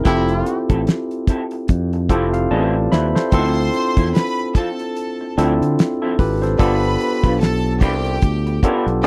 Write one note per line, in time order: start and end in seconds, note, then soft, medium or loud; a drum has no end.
0.04 0.42 F1 loud
0.04 0.60 C3 medium
0.04 0.60 A3 medium
0.04 0.20 C4 medium
0.04 1.50 C4 medium
0.04 0.60 E4 medium
0.04 0.20 E4 medium
0.04 1.51 E4 medium
0.04 1.51 F4 medium
0.04 1.51 G4 medium
0.04 0.21 A4 medium
0.04 1.51 A4 medium
0.04 kick loud
0.04 closed hi-hat medium
0.28 closed hi-hat soft
0.46 muted clean electric guitar stroke soft
0.46 closed hi-hat medium
0.69 0.85 A1 loud
0.69 0.79 C4 medium
0.69 0.79 E4 soft
0.69 0.79 A4 medium
0.69 kick medium
0.69 closed hi-hat soft
0.87 muted clean electric guitar stroke soft
0.87 snare loud
0.87 closed hi-hat medium
1.11 closed hi-hat soft
1.27 1.40 C4 medium
1.27 1.40 E4 medium
1.27 1.41 A4 medium
1.27 kick loud
1.27 closed hi-hat medium
1.51 muted clean electric guitar stroke soft
1.51 closed hi-hat soft
1.68 2.11 F2 medium
1.68 kick loud
1.68 closed hi-hat medium
1.93 muted clean electric guitar stroke soft
1.93 closed hi-hat soft
2.09 2.46 F1 medium
2.09 3.18 C4 medium
2.09 2.25 C4 medium
2.09 3.18 E4 medium
2.09 2.26 E4 medium
2.09 3.19 F4 medium
2.09 3.19 G4 medium
2.09 2.51 A4 medium
2.09 2.26 A4 medium
2.09 2.32 G5 medium
2.09 kick medium
2.09 closed hi-hat medium
2.33 2.49 F5 medium
2.33 muted clean electric guitar stroke soft
2.33 closed hi-hat medium
2.51 2.87 A1 medium
2.51 2.74 C4 medium
2.51 2.74 E4 medium
2.51 2.74 A4 medium
2.51 2.90 B4 medium
2.51 2.90 D5 medium
2.51 2.89 A5 medium
2.75 muted clean electric guitar stroke soft
2.92 3.13 D#2 medium
2.92 3.04 C4 soft
2.92 3.04 E4 medium
2.92 3.05 B4 medium
2.92 3.14 C5 medium
2.92 3.14 E5 medium
2.92 3.30 B5 medium
2.92 snare medium
3.15 3.33 A4 medium
3.15 3.54 C5 medium
3.15 muted clean electric guitar stroke soft
3.15 snare medium
3.32 3.68 D2 loud
3.32 3.56 F3 medium
3.32 4.77 C4 medium
3.32 3.57 C4 medium
3.32 4.77 D4 medium
3.32 4.77 E4 medium
3.32 4.77 F4 medium
3.32 4.78 A4 medium
3.32 4.10 C5 loud
3.32 4.10 C6 loud
3.32 kick loud
3.32 closed hi-hat medium
3.36 3.57 E4 medium
3.74 muted clean electric guitar stroke soft
3.74 closed hi-hat medium
3.97 4.12 E2 medium
3.97 4.07 F3 soft
3.97 4.07 C4 soft
3.97 4.06 E4 medium
3.97 kick medium
3.97 closed hi-hat medium
4.14 4.46 B4 loud
4.14 4.47 B5 loud
4.14 muted clean electric guitar stroke soft
4.14 snare loud
4.14 closed hi-hat medium
4.39 closed hi-hat soft
4.55 4.67 F3 soft
4.55 4.68 C4 medium
4.55 4.68 F4 medium
4.55 5.32 A4 medium
4.55 5.33 A5 medium
4.55 kick medium
4.55 closed hi-hat medium
4.79 muted clean electric guitar stroke soft
4.79 closed hi-hat soft
4.97 closed hi-hat medium
5.21 muted clean electric guitar stroke soft
5.37 5.58 D2 medium
5.37 5.52 F3 medium
5.37 6.46 C4 medium
5.37 5.53 C4 medium
5.37 6.46 D4 medium
5.37 5.78 E4 medium
5.37 5.53 E4 medium
5.37 5.78 F4 medium
5.37 5.78 A4 medium
5.37 closed hi-hat medium
5.61 5.76 D3 medium
5.61 muted clean electric guitar stroke soft
5.61 closed hi-hat medium
5.79 muted clean electric guitar stroke soft
5.79 snare loud
5.79 closed hi-hat medium
6.02 6.13 F3 medium
6.02 6.13 C4 medium
6.02 6.13 E4 medium
6.02 6.18 F4 medium
6.02 6.18 A4 medium
6.19 6.55 G#1 medium
6.19 6.41 G4 medium
6.19 6.41 B4 medium
6.19 muted clean electric guitar stroke soft
6.19 kick loud
6.19 open hi-hat medium
6.42 6.59 A4 medium
6.42 6.81 C5 medium
6.42 muted clean electric guitar stroke soft
6.42 snare soft
6.42 closed hi-hat medium
6.58 6.95 G1 loud
6.58 8.03 B3 medium
6.58 6.74 D4 medium
6.58 8.03 D4 medium
6.58 8.03 F4 medium
6.58 6.75 F4 medium
6.58 8.04 G4 medium
6.58 8.04 A4 medium
6.58 7.36 B4 loud
6.58 6.75 B4 medium
6.58 7.37 B5 loud
6.58 kick loud
6.58 closed hi-hat medium
6.83 closed hi-hat soft
7.00 muted clean electric guitar stroke soft
7.00 closed hi-hat medium
7.24 7.82 B1 medium
7.24 7.33 D4 soft
7.24 7.33 F4 soft
7.24 7.32 B4 soft
7.24 kick loud
7.24 closed hi-hat medium
7.39 7.73 A4 loud
7.39 7.72 A5 loud
7.39 muted clean electric guitar stroke soft
7.39 snare loud
7.39 closed hi-hat medium
7.66 closed hi-hat soft
7.81 8.17 C2 medium
7.81 7.93 D4 medium
7.81 7.93 F4 medium
7.81 8.59 G4 medium
7.81 7.94 B4 medium
7.81 8.59 G5 loud
7.81 kick medium
7.81 closed hi-hat medium
8.04 muted clean electric guitar stroke soft
8.04 closed hi-hat soft
8.22 8.58 D2 medium
8.22 kick loud
8.22 closed hi-hat medium
8.47 muted clean electric guitar stroke soft
8.47 closed hi-hat soft
8.63 9.02 B3 medium
8.63 8.86 D4 medium
8.63 9.04 D4 medium
8.63 8.86 F4 medium
8.63 9.03 F4 medium
8.63 9.05 G4 medium
8.63 9.05 A4 medium
8.63 8.86 B4 medium
8.63 kick medium
8.63 closed hi-hat medium
8.86 9.03 B1 medium
8.86 muted clean electric guitar stroke soft
8.86 closed hi-hat medium
9.03 9.07 C#2 loud
9.03 9.07 B3 medium
9.03 9.07 C#4 medium
9.03 9.07 D#4 loud
9.03 9.07 D#4 medium
9.03 9.07 D#5 loud